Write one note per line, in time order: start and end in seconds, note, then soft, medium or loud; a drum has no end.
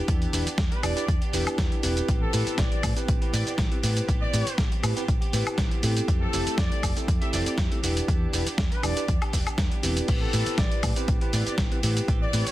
0.00 0.30 D4 medium
0.00 0.30 E4 medium
0.00 0.30 G4 medium
0.00 0.31 B4 loud
0.08 0.24 E2 medium
0.08 0.31 E3 medium
0.08 0.32 B3 loud
0.08 0.33 D4 loud
0.08 0.34 G4 loud
0.08 kick loud
0.08 closed hi-hat medium
0.08 shaker soft
0.22 closed hi-hat soft
0.32 0.41 E1 medium
0.32 0.46 E3 medium
0.32 0.47 B3 medium
0.32 0.45 D4 medium
0.32 0.46 D4 medium
0.32 0.45 E4 medium
0.32 0.45 G4 medium
0.32 0.45 B4 medium
0.32 open hi-hat loud
0.32 shaker medium
0.46 0.57 B3 medium
0.46 0.58 D4 medium
0.46 0.58 G4 medium
0.46 muted fingered electric bass stroke soft
0.46 closed hi-hat medium
0.46 shaker soft
0.58 0.66 E2 loud
0.58 0.71 E3 loud
0.58 kick loud
0.58 snare loud
0.58 closed hi-hat medium
0.58 shaker soft
0.71 0.97 B3 medium
0.71 0.96 D4 medium
0.71 0.95 G4 medium
0.71 0.81 B4 medium
0.71 closed hi-hat soft
0.83 0.91 E1 loud
0.83 0.93 D4 medium
0.83 0.93 E4 medium
0.83 0.93 G4 medium
0.83 0.94 B4 loud
0.83 1.22 D5 medium
0.83 open hi-hat loud
0.83 high woodblock medium
0.83 shaker medium
0.96 1.23 B3 medium
0.96 1.03 D4 medium
0.96 1.21 D4 medium
0.96 1.03 E4 medium
0.96 1.20 G4 medium
0.96 1.03 G4 medium
0.96 1.03 B4 medium
0.96 closed hi-hat medium
0.96 shaker soft
1.08 1.16 E2 loud
1.08 kick loud
1.08 closed hi-hat medium
1.08 shaker soft
1.21 1.32 B3 soft
1.21 1.33 D4 medium
1.21 1.33 G4 medium
1.21 closed hi-hat soft
1.33 1.41 E1 medium
1.33 1.46 E3 medium
1.33 1.47 B3 medium
1.33 1.80 D4 medium
1.33 1.46 D4 medium
1.33 1.80 E4 medium
1.33 1.81 G4 medium
1.33 1.45 G4 medium
1.33 1.81 B4 loud
1.33 open hi-hat loud
1.33 shaker medium
1.46 1.58 B3 medium
1.46 1.58 D4 medium
1.46 1.58 G4 medium
1.46 muted fingered electric bass stroke soft
1.46 closed hi-hat medium
1.46 high woodblock medium
1.46 shaker soft
1.58 1.67 E2 loud
1.58 1.82 E3 medium
1.58 1.82 B3 medium
1.58 1.83 D4 loud
1.58 1.84 G4 loud
1.58 kick loud
1.58 snare loud
1.58 closed hi-hat medium
1.58 shaker soft
1.72 closed hi-hat soft
1.83 1.99 E1 medium
1.83 1.96 E3 medium
1.83 1.97 B3 medium
1.83 2.30 C4 medium
1.83 1.96 D4 medium
1.83 2.30 E4 medium
1.83 2.31 G4 medium
1.83 1.95 G4 medium
1.83 2.31 B4 loud
1.83 open hi-hat loud
1.83 shaker medium
1.96 2.08 B3 soft
1.96 2.09 D4 medium
1.96 2.08 G4 medium
1.96 closed hi-hat medium
1.96 shaker soft
2.08 2.24 A1 loud
2.08 2.32 E3 medium
2.08 2.33 B3 loud
2.08 2.33 C4 loud
2.08 2.34 G4 loud
2.08 kick loud
2.08 closed hi-hat medium
2.08 shaker soft
2.22 2.56 A4 medium
2.33 2.42 A2 medium
2.33 2.47 E3 medium
2.33 2.47 B3 medium
2.33 2.46 C4 medium
2.33 2.80 E4 medium
2.33 2.80 G4 medium
2.33 2.45 G4 medium
2.33 2.81 B4 loud
2.33 open hi-hat loud
2.33 shaker medium
2.46 2.58 B3 soft
2.46 2.58 C4 medium
2.46 2.58 G4 medium
2.46 muted fingered electric bass stroke soft
2.46 closed hi-hat soft
2.46 shaker soft
2.58 2.67 A1 loud
2.58 2.72 E3 medium
2.58 2.72 B3 medium
2.58 2.71 C4 loud
2.58 2.70 G4 loud
2.58 2.97 D5 loud
2.58 kick loud
2.58 snare loud
2.58 closed hi-hat medium
2.58 shaker soft
2.71 2.98 B3 medium
2.71 2.96 C4 medium
2.71 2.95 G4 medium
2.71 closed hi-hat soft
2.83 2.92 A2 loud
2.83 2.90 C4 medium
2.83 2.90 E4 medium
2.83 2.91 G4 medium
2.83 2.91 B4 medium
2.83 kick medium
2.83 open hi-hat loud
2.83 high woodblock medium
2.83 shaker medium
2.96 3.23 B3 medium
2.96 3.18 C4 medium
2.96 3.21 C4 medium
2.96 3.18 E4 medium
2.96 3.20 G4 medium
2.96 3.19 G4 medium
2.96 3.19 B4 loud
2.96 closed hi-hat medium
2.96 shaker soft
3.08 3.17 A1 loud
3.08 kick loud
3.08 closed hi-hat medium
3.08 shaker soft
3.21 3.32 B3 medium
3.21 3.33 C4 medium
3.21 3.68 E4 medium
3.21 3.33 G4 medium
3.21 3.69 G4 medium
3.21 3.69 B4 medium
3.21 closed hi-hat soft
3.33 3.41 A2 medium
3.33 3.46 E3 medium
3.33 3.47 B3 medium
3.33 3.46 C4 medium
3.33 3.45 G4 medium
3.33 3.42 D5 medium
3.33 open hi-hat loud
3.33 shaker medium
3.46 3.58 B3 medium
3.46 3.58 C4 medium
3.46 3.58 G4 medium
3.46 3.54 D5 medium
3.46 muted fingered electric bass stroke soft
3.46 closed hi-hat soft
3.46 shaker soft
3.58 3.67 A1 loud
3.58 3.81 E3 loud
3.58 3.82 B3 medium
3.58 3.83 C4 medium
3.58 3.84 G4 loud
3.58 kick loud
3.58 snare loud
3.58 closed hi-hat medium
3.58 shaker soft
3.71 3.78 C4 medium
3.71 3.78 E4 medium
3.71 3.78 G4 medium
3.71 3.78 B4 loud
3.71 closed hi-hat soft
3.83 3.99 A2 medium
3.83 3.96 E3 medium
3.83 3.97 B3 medium
3.83 3.96 C4 medium
3.83 4.30 E4 medium
3.83 4.30 G4 medium
3.83 3.95 G4 medium
3.83 4.31 B4 loud
3.83 open hi-hat loud
3.83 shaker medium
3.96 4.07 B3 soft
3.96 4.07 C4 medium
3.96 4.08 G4 medium
3.96 closed hi-hat medium
3.96 shaker soft
4.07 4.24 A1 loud
4.07 4.32 E3 loud
4.07 4.33 B3 loud
4.07 4.33 C4 loud
4.07 4.34 G4 loud
4.07 kick loud
4.07 closed hi-hat medium
4.07 shaker soft
4.21 4.71 D5 medium
4.33 4.42 A2 medium
4.33 4.46 E3 medium
4.33 4.47 B3 medium
4.33 4.45 C4 medium
4.33 4.46 C4 medium
4.33 4.45 E4 medium
4.33 4.45 G4 medium
4.33 4.45 B4 medium
4.33 open hi-hat loud
4.33 shaker medium
4.46 4.58 B3 medium
4.46 4.58 C4 medium
4.46 4.58 G4 medium
4.46 muted fingered electric bass stroke soft
4.46 closed hi-hat medium
4.46 shaker soft
4.58 4.67 A1 loud
4.58 4.72 E3 loud
4.58 4.72 B3 loud
4.58 4.71 C4 loud
4.58 4.70 G4 loud
4.58 kick loud
4.58 snare loud
4.58 closed hi-hat medium
4.58 shaker soft
4.71 4.97 B3 medium
4.71 4.96 C4 medium
4.71 4.95 G4 medium
4.71 closed hi-hat soft
4.83 4.91 A2 loud
4.83 4.93 C4 loud
4.83 4.93 E4 medium
4.83 4.93 G4 medium
4.83 4.94 B4 loud
4.83 open hi-hat loud
4.83 high woodblock medium
4.83 shaker medium
4.96 5.22 B3 medium
4.96 5.03 C4 medium
4.96 5.21 C4 medium
4.96 5.03 E4 medium
4.96 5.20 G4 medium
4.96 5.03 G4 medium
4.96 5.03 B4 loud
4.96 closed hi-hat medium
4.96 shaker soft
5.08 5.17 A1 loud
5.08 kick loud
5.08 closed hi-hat medium
5.08 shaker soft
5.21 5.33 B3 medium
5.21 5.34 C4 medium
5.21 5.33 G4 medium
5.21 closed hi-hat soft
5.33 5.41 A2 medium
5.33 5.46 E3 medium
5.33 5.47 B3 medium
5.33 5.46 C4 medium
5.33 5.81 E4 medium
5.33 5.81 G4 medium
5.33 5.45 G4 medium
5.33 5.81 B4 medium
5.33 open hi-hat loud
5.33 shaker medium
5.46 5.57 B3 medium
5.46 5.58 C4 medium
5.46 5.58 G4 medium
5.46 muted fingered electric bass stroke soft
5.46 closed hi-hat medium
5.46 high woodblock medium
5.46 shaker soft
5.58 5.66 A1 loud
5.58 5.81 E3 loud
5.58 5.82 B3 loud
5.58 5.83 C4 loud
5.58 5.84 G4 loud
5.58 kick loud
5.58 snare loud
5.58 closed hi-hat medium
5.58 shaker soft
5.71 closed hi-hat soft
5.83 5.99 A2 medium
5.83 5.96 E3 medium
5.83 5.97 B3 medium
5.83 6.30 C4 loud
5.83 5.96 C4 medium
5.83 6.31 E4 medium
5.83 6.31 G4 medium
5.83 5.95 G4 medium
5.83 6.31 A4 loud
5.83 open hi-hat loud
5.83 shaker medium
5.96 6.08 B3 soft
5.96 6.08 C4 medium
5.96 6.08 G4 medium
5.96 closed hi-hat medium
5.96 shaker soft
6.08 6.24 F2 loud
6.08 6.31 E3 medium
6.08 6.32 A3 loud
6.08 6.33 C4 loud
6.08 6.34 G4 loud
6.08 kick loud
6.08 closed hi-hat medium
6.08 shaker soft
6.21 6.56 A4 loud
6.33 6.41 F1 medium
6.33 6.46 E3 medium
6.33 6.47 A3 medium
6.33 6.80 C4 medium
6.33 6.46 C4 medium
6.33 6.81 E4 medium
6.33 6.81 G4 medium
6.33 6.45 G4 medium
6.33 6.81 A4 loud
6.33 open hi-hat loud
6.33 shaker medium
6.46 6.57 A3 medium
6.46 6.58 C4 medium
6.46 6.58 G4 medium
6.46 muted fingered electric bass stroke soft
6.46 closed hi-hat medium
6.46 shaker soft
6.58 6.66 F2 loud
6.58 6.71 E3 medium
6.58 6.72 A3 loud
6.58 6.71 C4 loud
6.58 6.70 G4 loud
6.58 6.96 D5 loud
6.58 kick loud
6.58 snare loud
6.58 closed hi-hat medium
6.58 shaker soft
6.71 6.97 A3 soft
6.71 6.96 C4 medium
6.71 6.95 G4 medium
6.71 closed hi-hat soft
6.83 6.91 F1 loud
6.83 6.90 C4 medium
6.83 6.90 E4 medium
6.83 6.91 G4 medium
6.83 6.91 A4 medium
6.83 kick medium
6.83 open hi-hat loud
6.83 high woodblock medium
6.83 shaker medium
6.96 7.22 A3 medium
6.96 7.18 C4 loud
6.96 7.21 C4 medium
6.96 7.19 E4 medium
6.96 7.20 G4 medium
6.96 7.19 G4 medium
6.96 7.19 A4 loud
6.96 closed hi-hat medium
6.96 shaker soft
7.08 7.16 F2 loud
7.08 kick loud
7.08 closed hi-hat medium
7.08 shaker soft
7.21 7.32 A3 medium
7.21 7.68 C4 medium
7.21 7.33 C4 medium
7.21 7.69 E4 medium
7.21 7.33 G4 medium
7.21 7.69 G4 medium
7.21 7.69 A4 loud
7.21 7.31 E5 medium
7.21 closed hi-hat soft
7.33 7.41 F1 medium
7.33 7.46 E3 medium
7.33 7.47 A3 medium
7.33 7.46 C4 medium
7.33 7.45 G4 medium
7.33 7.42 D5 medium
7.33 open hi-hat loud
7.33 shaker medium
7.46 7.57 A3 medium
7.46 7.58 C4 medium
7.46 7.58 G4 medium
7.46 7.54 D5 medium
7.46 muted fingered electric bass stroke soft
7.46 closed hi-hat medium
7.46 shaker soft
7.58 7.66 F2 loud
7.58 7.82 E3 medium
7.58 7.83 A3 loud
7.58 7.84 C4 loud
7.58 7.84 G4 loud
7.58 kick loud
7.58 snare loud
7.58 closed hi-hat medium
7.58 shaker soft
7.71 7.78 C4 medium
7.71 7.78 E4 medium
7.71 7.78 G4 medium
7.71 7.78 A4 loud
7.71 closed hi-hat soft
7.83 7.99 E1 medium
7.83 7.97 E3 medium
7.83 7.97 B3 medium
7.83 8.30 D4 medium
7.83 7.96 D4 medium
7.83 8.31 E4 medium
7.83 8.31 G4 medium
7.83 7.95 G4 medium
7.83 8.31 B4 medium
7.83 open hi-hat loud
7.83 shaker medium
7.96 8.08 B3 soft
7.96 8.08 D4 medium
7.96 8.08 G4 medium
7.96 closed hi-hat medium
7.96 shaker soft
8.08 8.24 E2 loud
8.08 8.33 B3 loud
8.08 8.33 D4 loud
8.08 8.34 G4 loud
8.08 kick loud
8.08 closed hi-hat medium
8.08 shaker soft
8.33 8.41 E1 medium
8.33 8.46 E3 medium
8.33 8.47 B3 medium
8.33 8.45 D4 medium
8.33 8.46 D4 medium
8.33 8.45 E4 medium
8.33 8.45 G4 medium
8.33 8.45 B4 medium
8.33 open hi-hat loud
8.33 shaker medium
8.46 8.57 B3 soft
8.46 8.58 D4 medium
8.46 8.58 G4 medium
8.46 muted fingered electric bass stroke soft
8.46 closed hi-hat medium
8.46 shaker soft
8.58 8.67 E2 loud
8.58 8.71 E3 medium
8.58 8.72 B3 loud
8.58 8.71 D4 loud
8.58 8.70 G4 medium
8.58 kick loud
8.58 snare loud
8.58 closed hi-hat medium
8.58 shaker soft
8.71 8.97 B3 medium
8.71 8.96 D4 medium
8.71 8.95 G4 medium
8.71 8.81 B4 medium
8.71 closed hi-hat soft
8.83 8.91 E1 loud
8.83 8.93 D4 loud
8.83 8.93 E4 medium
8.83 8.94 G4 medium
8.83 8.94 B4 loud
8.83 9.22 D5 medium
8.83 open hi-hat medium
8.83 high woodblock medium
8.83 shaker medium
8.96 9.22 B3 medium
8.96 9.03 D4 medium
8.96 9.21 D4 medium
8.96 9.03 E4 medium
8.96 9.20 G4 medium
8.96 9.03 G4 medium
8.96 9.03 B4 medium
8.96 closed hi-hat medium
8.96 shaker soft
9.08 9.17 E2 loud
9.08 kick loud
9.08 closed hi-hat medium
9.08 shaker soft
9.21 9.33 B3 soft
9.21 9.33 D4 medium
9.21 9.33 G4 medium
9.21 muted fingered electric bass stroke soft
9.21 closed hi-hat soft
9.21 high woodblock medium
9.33 9.42 E1 medium
9.33 9.47 E3 medium
9.33 9.47 B3 medium
9.33 9.46 D4 medium
9.33 9.45 G4 medium
9.33 kick medium
9.33 open hi-hat loud
9.33 shaker medium
9.46 9.57 B3 medium
9.46 9.58 D4 medium
9.46 9.58 G4 medium
9.46 muted fingered electric bass stroke soft
9.46 closed hi-hat medium
9.46 high woodblock medium
9.46 shaker soft
9.58 9.66 E2 loud
9.58 9.82 E3 medium
9.58 9.83 B3 loud
9.58 9.83 D4 loud
9.58 9.84 G4 loud
9.58 kick loud
9.58 snare loud
9.58 closed hi-hat medium
9.58 shaker soft
9.72 closed hi-hat soft
9.83 9.99 E1 medium
9.83 9.96 E3 medium
9.83 9.97 B3 medium
9.83 10.30 C4 medium
9.83 9.96 D4 medium
9.83 10.30 E4 medium
9.83 10.31 G4 medium
9.83 9.95 G4 medium
9.83 10.31 B4 loud
9.83 open hi-hat loud
9.83 shaker medium
9.96 10.07 B3 medium
9.96 10.09 D4 medium
9.96 10.08 G4 medium
9.96 closed hi-hat medium
9.96 shaker soft
10.08 10.24 A1 medium
10.08 10.32 E3 loud
10.08 10.32 B3 loud
10.08 10.33 C4 medium
10.08 10.34 G4 loud
10.08 kick loud
10.08 closed hi-hat medium
10.08 crash medium
10.08 shaker soft
10.22 10.56 A4 medium
10.33 10.42 A2 medium
10.33 10.46 E3 medium
10.33 10.47 B3 medium
10.33 10.46 C4 medium
10.33 10.80 E4 medium
10.33 10.81 G4 medium
10.33 10.45 G4 medium
10.33 10.81 B4 loud
10.33 open hi-hat loud
10.33 shaker medium
10.46 10.57 B3 medium
10.46 10.58 C4 medium
10.46 10.58 G4 medium
10.46 muted fingered electric bass stroke soft
10.46 closed hi-hat medium
10.46 shaker soft
10.58 10.67 A1 loud
10.58 10.71 E3 medium
10.58 10.72 B3 medium
10.58 10.70 G4 loud
10.58 10.97 D5 loud
10.58 kick loud
10.58 snare loud
10.58 closed hi-hat medium
10.58 shaker soft
10.71 10.97 B3 medium
10.71 10.96 C4 medium
10.71 10.95 G4 medium
10.71 closed hi-hat soft
10.83 10.91 A2 loud
10.83 10.90 C4 medium
10.83 10.91 E4 medium
10.83 10.91 G4 medium
10.83 10.91 B4 medium
10.83 kick medium
10.83 open hi-hat loud
10.83 high woodblock medium
10.83 shaker medium
10.96 11.22 B3 medium
10.96 11.18 C4 loud
10.96 11.21 C4 medium
10.96 11.19 E4 medium
10.96 11.20 G4 medium
10.96 11.19 G4 medium
10.96 11.19 B4 loud
10.96 closed hi-hat medium
10.96 shaker soft
11.08 11.16 A1 loud
11.08 kick loud
11.08 closed hi-hat medium
11.08 shaker soft
11.21 11.32 B3 medium
11.21 11.33 C4 medium
11.21 11.68 E4 medium
11.21 11.33 G4 medium
11.21 11.69 G4 medium
11.21 11.69 B4 loud
11.21 closed hi-hat soft
11.33 11.41 A2 medium
11.33 11.46 E3 medium
11.33 11.47 B3 medium
11.33 11.46 C4 medium
11.33 11.45 G4 medium
11.33 11.42 D5 medium
11.33 open hi-hat loud
11.33 shaker medium
11.46 11.57 B3 medium
11.46 11.58 C4 medium
11.46 11.58 G4 medium
11.46 11.54 D5 medium
11.46 muted fingered electric bass stroke soft
11.46 closed hi-hat medium
11.46 shaker soft
11.58 11.66 A1 loud
11.58 11.81 E3 medium
11.58 11.82 B3 loud
11.58 11.83 C4 loud
11.58 11.84 G4 loud
11.58 kick loud
11.58 snare loud
11.58 closed hi-hat medium
11.58 shaker soft
11.71 11.78 C4 medium
11.71 11.78 E4 medium
11.71 11.78 G4 medium
11.71 11.78 B4 loud
11.71 closed hi-hat soft
11.83 11.99 A2 medium
11.83 11.96 E3 medium
11.83 11.97 B3 medium
11.83 11.96 C4 medium
11.83 12.30 E4 medium
11.83 12.31 G4 medium
11.83 11.95 G4 medium
11.83 12.31 B4 loud
11.83 open hi-hat loud
11.83 shaker medium
11.96 12.07 B3 soft
11.96 12.08 C4 medium
11.96 12.08 G4 medium
11.96 closed hi-hat medium
11.96 shaker soft
12.08 12.24 A1 loud
12.08 12.31 E3 medium
12.08 12.32 B3 loud
12.08 12.33 C4 loud
12.08 12.34 G4 loud
12.08 kick loud
12.08 closed hi-hat medium
12.08 shaker soft
12.22 12.52 D5 medium
12.33 12.41 A2 medium
12.33 12.46 E3 medium
12.33 12.47 B3 medium
12.33 12.45 C4 medium
12.33 12.46 C4 medium
12.33 12.45 E4 medium
12.33 12.45 G4 medium
12.33 12.45 B4 medium
12.33 open hi-hat loud
12.33 shaker medium
12.46 12.52 B3 medium
12.46 12.52 C4 medium
12.46 12.52 G4 medium
12.46 muted fingered electric bass stroke soft
12.46 closed hi-hat medium
12.46 shaker soft